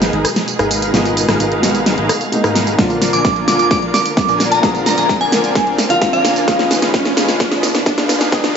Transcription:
Already playing: G#1 B2 G#3 A#3 D#4 G#4 A#4 B4 F5, riser
0.02 snare, closed hi-hat, tambourine
0.13 G#1 D#4 G#4 A#4 B4 D#5, closed hi-hat
0.25 cross-stick, open hi-hat, tambourine
0.36 snare, closed hi-hat, tambourine
0.48 closed hi-hat, tambourine
0.59 G#1 D#4 G#4 A#4 B4 F5, cross-stick, closed hi-hat, tambourine
0.71 open hi-hat, tambourine
0.82 closed hi-hat, tambourine
0.93 G#1 B2 G#3 D#4 F4 G#4 A#4 B4 D#5 F5, snare, closed hi-hat, tambourine
1.05 closed hi-hat, tambourine
1.17 open hi-hat, tambourine
1.29 G#1 D#4 G#4 A#4 B4 F5, cross-stick, snare, closed hi-hat, tambourine
1.40 G#1 D#4 G#4 A#4 B4 F5, closed hi-hat, tambourine
1.52 closed hi-hat
1.62 B2 G#3 F#4, snare, open hi-hat, tambourine
1.75 closed hi-hat, tambourine
1.86 snare, closed hi-hat, tambourine
1.98 G#1 D#4 G#4 A#4 B4 D#5, closed hi-hat
2.09 cross-stick, open hi-hat, tambourine
2.21 closed hi-hat, tambourine
2.32 B2 G#3 A#3 D#4, closed hi-hat, tambourine
2.44 G#2 D#4 G#4 A#4 B4 F5, cross-stick, closed hi-hat, tambourine
2.55 B2 G#3 A#3 D#4, snare, open hi-hat, tambourine
2.67 closed hi-hat, tambourine
2.77 A#1 D3 F3 A#3 D4 F4 A#4 D5 F5, kick, snare, closed hi-hat, tambourine
2.90 closed hi-hat, tambourine
3.02 snare, open hi-hat, tambourine
3.13 A#1 D4 F4 A#4 D5 G#5 D6, closed hi-hat, tambourine
3.25 A#1 D4 F4 A#4 D5 G#5, kick, snare, closed hi-hat, tambourine
3.36 closed hi-hat
3.47 D3 F3 A#3 F4 D6, snare, open hi-hat, tambourine
3.59 D6, closed hi-hat, tambourine
3.71 D6, kick, snare, closed hi-hat, tambourine
3.82 A#1 D4 F4 A#4 D5 F5, closed hi-hat
3.94 D6, snare, open hi-hat, tambourine
4.06 closed hi-hat, tambourine
4.17 kick, snare, closed hi-hat, tambourine
4.29 A#1 D4 F4 A#4 D5 G#5, closed hi-hat, tambourine
4.40 snare, open hi-hat, tambourine
4.52 A#5, closed hi-hat, tambourine
4.62 A#1 D3 F3 A#3 G#4 A#4, kick, snare, closed hi-hat, tambourine
4.75 closed hi-hat, tambourine
4.86 A#5, snare, open hi-hat, tambourine
4.98 A#1 D4 F4 A#4 D5 G#5 A#5, closed hi-hat, tambourine
5.09 A#1 D4 D5, kick, snare, closed hi-hat, tambourine
5.21 G#5, closed hi-hat
5.31 D3 F3 A#3 A#4, snare, open hi-hat, tambourine
5.44 closed hi-hat, tambourine
5.55 kick, snare, closed hi-hat, tambourine
5.67 A#1 D4 F4 A#4 D5 F5, closed hi-hat
5.79 snare, open hi-hat, tambourine
5.89 D3 F3 A#3 F4 F5, closed hi-hat, tambourine
6.02 kick, snare, closed hi-hat, tambourine
6.13 A#1 D4 F4 A#4 D5 F5 G#5, closed hi-hat, tambourine
6.25 snare, open hi-hat, tambourine
6.36 closed hi-hat, tambourine
6.47 F1 D#3 G#3 B3 D#4 F4 G#4 D#5, kick, snare, closed hi-hat, tambourine
6.59 snare, closed hi-hat, tambourine
6.71 snare, open hi-hat, tambourine
6.82 F1 D#4 F4 G#4 B4 F5, snare, closed hi-hat, tambourine
6.94 F1 F4 F5, kick, snare, closed hi-hat, tambourine
7.05 snare, closed hi-hat
7.16 D#3 G#3 B3 F4, snare, open hi-hat, tambourine
7.29 snare, closed hi-hat, tambourine
7.40 kick, snare, closed hi-hat, tambourine
7.52 F1 D#4 F4 G#4 B4 D#5, snare, closed hi-hat
7.63 snare, open hi-hat, tambourine
7.75 snare, closed hi-hat, tambourine
7.86 kick, snare, closed hi-hat, tambourine
7.98 F1 D#4 F4 G#4 B4 F5, snare, closed hi-hat, tambourine
8.09 snare, open hi-hat, tambourine
8.21 snare, closed hi-hat, tambourine
8.31 F1 D#3 G#3 B3 D#4 F4 G#4 B4 D#5, kick, snare, closed hi-hat, tambourine
8.44 snare, closed hi-hat, tambourine

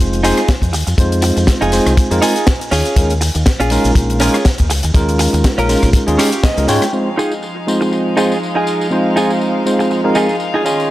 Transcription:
Already playing: G#3 C4 D#4 F4 C5
0.00 F1, closed hi-hat, tambourine
0.13 closed hi-hat, shaker
0.23 G#3 C4 D#4 F4 G#4 C5, open hi-hat, tambourine, shaker
0.37 cross-stick, closed hi-hat, tambourine, shaker
0.48 kick, snare, closed hi-hat, tambourine, shaker
0.62 F2, kick, closed hi-hat, shaker
0.73 D#2, muted clean electric guitar stroke, open hi-hat, tambourine, shaker
0.87 F2, muted clean electric guitar stroke, closed hi-hat, tambourine, shaker
0.97 F2 G#3 C4 D#4 F4 C5, kick, closed hi-hat, tambourine, shaker
1.12 closed hi-hat, shaker
1.22 muted clean electric guitar stroke, open hi-hat, tambourine, shaker
1.36 F2, muted clean electric guitar stroke, closed hi-hat, tambourine, shaker
1.47 muted clean electric guitar stroke, kick, snare, closed hi-hat, tambourine, shaker
1.61 F1 D#4 F4 G#4, closed hi-hat, shaker
1.72 G#3 C4 D#4 F4 C5, open hi-hat, tambourine, shaker
1.86 C2, cross-stick, closed hi-hat, tambourine, shaker
1.97 kick, closed hi-hat, tambourine, shaker
2.11 F2 G#3 C4 D#4 F4 A#4, closed hi-hat, shaker
2.22 D#4 F4 G#4, open hi-hat, tambourine, shaker
2.36 closed hi-hat, tambourine, shaker
2.47 kick, snare, closed hi-hat, tambourine, shaker
2.61 closed hi-hat, shaker
2.71 D#2 C#4 F4 G#4, open hi-hat, tambourine, shaker
2.85 closed hi-hat, tambourine, shaker
2.96 D#2 G#3 C#4 D#4 F4 A#4, kick, closed hi-hat, tambourine, shaker
3.10 closed hi-hat, shaker
3.21 muted clean electric guitar stroke, open hi-hat, tambourine, shaker
3.35 D#2, muted clean electric guitar stroke, closed hi-hat, tambourine, shaker
3.46 muted clean electric guitar stroke, kick, snare, closed hi-hat, tambourine, shaker
3.60 A#1 C#4 F4 G#4, closed hi-hat, shaker
3.70 G#3 C#4 D#4 F4 A#4, open hi-hat, tambourine, shaker
3.84 A#1, closed hi-hat, tambourine, shaker
3.95 A#1, kick, closed hi-hat, tambourine, shaker
4.10 closed hi-hat, shaker
4.20 G#3 C#4 D#4 F4 G#4 A#4, open hi-hat, tambourine, shaker
4.34 cross-stick, closed hi-hat, tambourine, shaker
4.45 kick, snare, closed hi-hat, tambourine, shaker
4.58 D#2, kick, closed hi-hat, shaker
4.70 C#2, muted clean electric guitar stroke, open hi-hat, tambourine, shaker
4.83 D#2, muted clean electric guitar stroke, closed hi-hat, tambourine, shaker
4.94 D#2 G#3 C#4 D#4 F4 A#4, kick, closed hi-hat, tambourine, shaker
5.09 closed hi-hat, shaker
5.19 muted clean electric guitar stroke, open hi-hat, tambourine, shaker
5.33 D#2, muted clean electric guitar stroke, closed hi-hat, tambourine, shaker
5.44 muted clean electric guitar stroke, kick, snare, closed hi-hat, tambourine, shaker
5.58 A#1 C#4 F4 A#4, closed hi-hat, shaker
5.69 G#3 C#4 D#4 F4 A#4, open hi-hat, tambourine, shaker
5.83 A#1, kick, cross-stick, closed hi-hat, tambourine, shaker
5.93 kick, closed hi-hat, tambourine, shaker
6.07 D#2 G#3 C#4 D#4 F4 G#4, closed hi-hat, shaker
6.19 C#4 F4 G4, open hi-hat, tambourine, shaker
6.32 closed hi-hat, tambourine, shaker
6.43 D#5, kick, snare, closed hi-hat, tambourine, shaker
6.57 C#2 G#3 C#4 D#4 F4 A#4, closed hi-hat, shaker
6.68 G#2 G#3 C#4 D#4 F4 C#5 G5, muted clean electric guitar stroke, open hi-hat, tambourine, shaker
6.82 muted clean electric guitar stroke, cross-stick, closed hi-hat, tambourine, shaker
6.93 F3 G#3 C4 D#4 F4 C5 F5, tambourine
7.17 D#4 F4 G#4, tambourine
7.32 tambourine
7.42 muted clean electric guitar stroke, tambourine
7.67 G#3 C4 D#4 F4 C5, tambourine
7.81 muted clean electric guitar stroke, tambourine
7.92 muted clean electric guitar stroke, tambourine
8.17 G#3 C4 D#4 F4 G#4 C5, tambourine
8.32 tambourine
8.43 tambourine
8.55 D#4 F4 G#4
8.67 tambourine
8.81 tambourine
8.90 G#3 C4 D#4 F4 C5, tambourine
9.16 D#4 F4 G#4, tambourine
9.30 tambourine
9.41 muted clean electric guitar stroke, tambourine
9.65 G#3 C4 D#4 F4 C5, tambourine
9.79 muted clean electric guitar stroke, tambourine
9.90 muted clean electric guitar stroke, tambourine
10.04 G#3 C4 D#4 F4 A#4
10.15 D#4 F4 G#4, tambourine
10.29 tambourine
10.40 tambourine
10.54 D#4 F4 G#4
10.65 D#3 G#3 C#4 D#4 F4 G#4, tambourine
10.80 tambourine

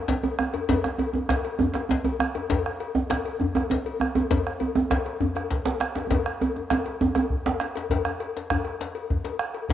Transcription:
0.08 bombo low, djembe slap, djembe tone
0.24 cowbell, djembe slap, djembe tone
0.39 bombo rim, djembe tone
0.54 bombo rim, cowbell, djembe tone
0.69 bombo rim, bombo low, cowbell, djembe slap, djembe tone, djembe bass
0.84 bombo rim, djembe slap
0.98 bombo rim, cowbell, djembe slap, djembe tone
1.13 djembe slap, djembe tone
1.15 djembe tone
1.29 bombo rim, bombo low, cowbell, djembe slap, djembe tone
1.45 bombo rim, cowbell
1.59 djembe tone, djembe bass
1.74 bombo rim, cowbell, djembe slap, djembe tone
1.89 bombo low, djembe slap, djembe tone
2.04 cowbell, djembe tone
2.20 bombo rim, djembe tone
2.35 cowbell, djembe slap, djembe tone
2.50 bombo rim, bombo low, cowbell, djembe slap, djembe bass
2.66 bombo rim
2.80 bombo rim, cowbell, djembe slap
2.95 djembe slap, djembe tone
3.10 bombo rim, bombo low, cowbell, djembe slap, djembe tone
3.25 bombo rim, cowbell
3.40 djembe tone, djembe bass
3.55 bombo rim, cowbell, djembe tone
3.70 bombo low, djembe slap, djembe tone
3.86 cowbell
4.00 bombo rim, djembe tone
4.15 cowbell, djembe slap, djembe tone
4.31 bombo rim, bombo low, cowbell, djembe slap, djembe tone, djembe bass
4.47 bombo rim
4.60 bombo rim, cowbell, djembe tone
4.75 djembe slap, djembe tone
4.90 bombo rim, bombo low, cowbell, djembe slap, djembe tone
5.06 bombo rim, cowbell
5.20 djembe tone, djembe bass
5.35 bombo rim, cowbell, djembe tone
5.50 bombo low, djembe slap
5.65 cowbell, djembe slap
5.80 bombo rim, djembe slap
5.95 cowbell, djembe slap, djembe tone
6.10 bombo low, cowbell, djembe slap, djembe tone, djembe bass
6.26 bombo rim, djembe slap
6.41 cowbell, djembe tone
6.56 bombo rim, djembe tone
6.70 bombo rim, bombo low, cowbell, djembe slap, djembe tone
6.86 cowbell
7.01 djembe tone, djembe bass
7.15 bombo rim, cowbell, djembe tone
7.30 bombo low, djembe bass
7.46 cowbell, djembe slap, djembe bass
7.60 bombo rim, djembe slap
7.76 bombo rim, cowbell, djembe slap
7.90 bombo low, cowbell, djembe slap, djembe bass
8.05 bombo rim, djembe tone
8.20 bombo rim, cowbell, djembe slap
8.37 djembe slap
8.50 bombo rim, bombo low, cowbell, djembe bass
8.65 cowbell
8.81 bombo rim, djembe slap
8.95 cowbell
9.10 bombo low, djembe slap, djembe bass
9.24 cowbell, djembe slap
9.39 bombo rim
9.54 cowbell
9.69 bombo low, cowbell

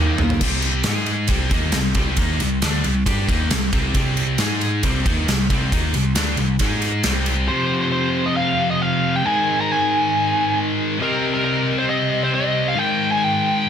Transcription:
Already playing: D#2
0.00 D#3 A#3 D#4 A#4 F5
0.18 D#2 D#3 A#3, floor tom
0.30 floor tom
0.41 C2 C3 G3 C4, kick, crash
0.62 ride
0.83 G#2 G#3, snare, ride
0.88 D#4 G#4
1.06 ride
1.28 C2 C3 G3 C4, kick, ride
1.50 D#2 D#3 A#3 D#4, kick, ride
1.72 C2 C3 G3, snare, ride
1.94 C2 C3 G3 C4, kick, ride
2.17 D#2 D#3 A#3 D#4, kick, ride
2.39 C2 C3 G3, ride
2.62 D2 D3 A3 D4, snare, ride
2.84 C2 C3 G3, ride
3.06 G2 G3 D4 G4, kick, ride
3.28 D#2 D#3 A#3 D#4, kick, ride
3.50 C2 C3 G3, snare, ride
3.72 C2 C3 G3 C4, kick, ride
3.94 C2 C3 G3 C4, kick, ride
4.17 ride
4.38 G#2 G#3 D#4 G#4, snare, ride
4.61 ride
4.83 C2 C3 G3 C4, kick, ride
5.05 D#2 D#3 A#3 D#4, kick, ride
5.27 C2 C3 G3, snare, ride
5.49 C2 C3 G3 C4, kick, ride
5.72 D#2 D#3 A#3 D#4, kick, ride
5.93 C2 C3 G3, ride
6.15 D2 D3 A3 D4, snare, ride
6.37 C2 C3 G3, ride
6.59 G#2 G#3 D#4 G#4, kick, ride
6.82 ride
7.03 C2 C3 G3 C4, snare, ride
7.26 ride
7.48 F2 C3 F3 C4 G4 C5
7.82 C5
7.92 C5
8.26 D#5
8.37 F5
8.71 D#5
8.82 F5
9.16 G5
9.24 G#2 D#3 G#3 D#4 A#4 G#5
9.61 A#5
9.72 G#5
10.99 C3 G3 C4 G4 A#4 D#5
11.34 A#4
11.45 A#4
11.78 C5
11.90 D#5
12.24 C5
12.35 D#5
12.68 F5
12.75 G#2 D#3 G#3 D#4 A#4 G5
13.12 G#5
13.24 G5

